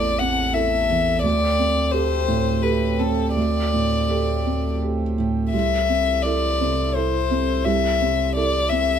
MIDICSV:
0, 0, Header, 1, 5, 480
1, 0, Start_track
1, 0, Key_signature, 0, "minor"
1, 0, Tempo, 694444
1, 854, Time_signature, 3, 2, 24, 8
1, 1822, Tempo, 723764
1, 3742, Tempo, 703400
1, 6104, End_track
2, 0, Start_track
2, 0, Title_t, "Violin"
2, 0, Program_c, 0, 40
2, 0, Note_on_c, 0, 74, 66
2, 133, Note_on_c, 0, 78, 65
2, 143, Note_off_c, 0, 74, 0
2, 370, Note_on_c, 0, 76, 59
2, 380, Note_off_c, 0, 78, 0
2, 838, Note_off_c, 0, 76, 0
2, 842, Note_on_c, 0, 74, 76
2, 1321, Note_on_c, 0, 72, 70
2, 1331, Note_off_c, 0, 74, 0
2, 1815, Note_on_c, 0, 71, 58
2, 1825, Note_off_c, 0, 72, 0
2, 2059, Note_on_c, 0, 69, 58
2, 2069, Note_off_c, 0, 71, 0
2, 2289, Note_off_c, 0, 69, 0
2, 2293, Note_on_c, 0, 74, 59
2, 3236, Note_off_c, 0, 74, 0
2, 3727, Note_on_c, 0, 76, 63
2, 4216, Note_on_c, 0, 74, 67
2, 4227, Note_off_c, 0, 76, 0
2, 4707, Note_on_c, 0, 72, 61
2, 4717, Note_off_c, 0, 74, 0
2, 5184, Note_on_c, 0, 76, 65
2, 5194, Note_off_c, 0, 72, 0
2, 5665, Note_off_c, 0, 76, 0
2, 5668, Note_on_c, 0, 74, 69
2, 5901, Note_on_c, 0, 76, 72
2, 5911, Note_off_c, 0, 74, 0
2, 6104, Note_off_c, 0, 76, 0
2, 6104, End_track
3, 0, Start_track
3, 0, Title_t, "Felt piano"
3, 0, Program_c, 1, 0
3, 0, Control_c, 1, 64, 127
3, 0, Note_on_c, 1, 33, 41
3, 0, Note_on_c, 1, 40, 34
3, 0, Note_on_c, 1, 60, 31
3, 0, Note_on_c, 1, 64, 32
3, 0, Note_on_c, 1, 69, 39
3, 119, Note_off_c, 1, 64, 0
3, 121, Note_off_c, 1, 69, 0
3, 144, Note_off_c, 1, 60, 0
3, 144, Note_on_c, 1, 60, 39
3, 373, Note_on_c, 1, 64, 37
3, 379, Note_on_c, 1, 69, 39
3, 522, Note_off_c, 1, 60, 0
3, 589, Note_off_c, 1, 64, 0
3, 592, Note_off_c, 1, 69, 0
3, 618, Note_off_c, 1, 40, 0
3, 618, Note_on_c, 1, 40, 38
3, 829, Note_off_c, 1, 33, 0
3, 854, Note_on_c, 1, 38, 51
3, 855, Note_off_c, 1, 40, 0
3, 868, Control_c, 1, 64, 0
3, 983, Control_c, 1, 64, 127
3, 1098, Note_on_c, 1, 60, 41
3, 1335, Note_on_c, 1, 67, 40
3, 1342, Note_on_c, 1, 69, 40
3, 1485, Note_off_c, 1, 60, 0
3, 1555, Note_off_c, 1, 67, 0
3, 1559, Note_off_c, 1, 69, 0
3, 1578, Note_on_c, 1, 45, 39
3, 1819, Note_on_c, 1, 67, 34
3, 1821, Note_on_c, 1, 69, 36
3, 1963, Note_off_c, 1, 45, 0
3, 2035, Note_off_c, 1, 67, 0
3, 2036, Note_off_c, 1, 69, 0
3, 2058, Note_on_c, 1, 60, 34
3, 2278, Note_off_c, 1, 38, 0
3, 2302, Note_on_c, 1, 38, 38
3, 2316, Control_c, 1, 64, 0
3, 2447, Control_c, 1, 64, 127
3, 2448, Note_off_c, 1, 60, 0
3, 2552, Note_on_c, 1, 45, 27
3, 2789, Note_on_c, 1, 67, 29
3, 2794, Note_on_c, 1, 69, 29
3, 2929, Note_off_c, 1, 45, 0
3, 3000, Note_off_c, 1, 67, 0
3, 3003, Note_off_c, 1, 69, 0
3, 3030, Note_on_c, 1, 60, 26
3, 3271, Note_on_c, 1, 67, 22
3, 3273, Note_on_c, 1, 69, 26
3, 3410, Note_off_c, 1, 60, 0
3, 3484, Note_off_c, 1, 67, 0
3, 3485, Note_off_c, 1, 69, 0
3, 3509, Note_on_c, 1, 45, 25
3, 3715, Note_off_c, 1, 38, 0
3, 3746, Note_off_c, 1, 45, 0
3, 3746, Note_on_c, 1, 36, 39
3, 3757, Control_c, 1, 64, 0
3, 3875, Control_c, 1, 64, 127
3, 3987, Note_on_c, 1, 60, 33
3, 4231, Note_on_c, 1, 64, 36
3, 4237, Note_on_c, 1, 69, 35
3, 4372, Note_off_c, 1, 60, 0
3, 4445, Note_off_c, 1, 64, 0
3, 4448, Note_off_c, 1, 69, 0
3, 4476, Note_on_c, 1, 48, 35
3, 4714, Note_on_c, 1, 64, 36
3, 4716, Note_on_c, 1, 69, 37
3, 4855, Note_off_c, 1, 48, 0
3, 4926, Note_off_c, 1, 64, 0
3, 4927, Note_off_c, 1, 69, 0
3, 4952, Note_on_c, 1, 60, 37
3, 5160, Note_off_c, 1, 36, 0
3, 5191, Note_on_c, 1, 36, 54
3, 5197, Control_c, 1, 64, 0
3, 5309, Control_c, 1, 64, 127
3, 5333, Note_off_c, 1, 60, 0
3, 5438, Note_on_c, 1, 48, 37
3, 5677, Note_on_c, 1, 64, 40
3, 5679, Note_on_c, 1, 69, 45
3, 5816, Note_off_c, 1, 48, 0
3, 5887, Note_off_c, 1, 64, 0
3, 5888, Note_off_c, 1, 69, 0
3, 5912, Note_on_c, 1, 60, 42
3, 6104, Note_off_c, 1, 36, 0
3, 6104, Note_off_c, 1, 60, 0
3, 6104, End_track
4, 0, Start_track
4, 0, Title_t, "Harmonium"
4, 0, Program_c, 2, 20
4, 0, Note_on_c, 2, 57, 29
4, 0, Note_on_c, 2, 60, 29
4, 0, Note_on_c, 2, 69, 32
4, 828, Note_off_c, 2, 60, 0
4, 828, Note_off_c, 2, 69, 0
4, 830, Note_off_c, 2, 57, 0
4, 853, Note_on_c, 2, 60, 46
4, 854, Note_on_c, 2, 67, 45
4, 860, Note_on_c, 2, 57, 47
4, 3715, Note_off_c, 2, 60, 0
4, 3719, Note_off_c, 2, 57, 0
4, 3735, Note_on_c, 2, 57, 39
4, 3740, Note_on_c, 2, 72, 39
4, 3741, Note_on_c, 2, 64, 38
4, 3742, Note_off_c, 2, 67, 0
4, 6104, Note_off_c, 2, 57, 0
4, 6104, Note_off_c, 2, 64, 0
4, 6104, Note_off_c, 2, 72, 0
4, 6104, End_track
5, 0, Start_track
5, 0, Title_t, "Sub bass"
5, 0, Program_c, 3, 38
5, 0, Note_on_c, 3, 33, 50
5, 850, Note_on_c, 3, 38, 56
5, 861, Note_off_c, 3, 33, 0
5, 3738, Note_on_c, 3, 36, 52
5, 3748, Note_off_c, 3, 38, 0
5, 6104, Note_off_c, 3, 36, 0
5, 6104, End_track
0, 0, End_of_file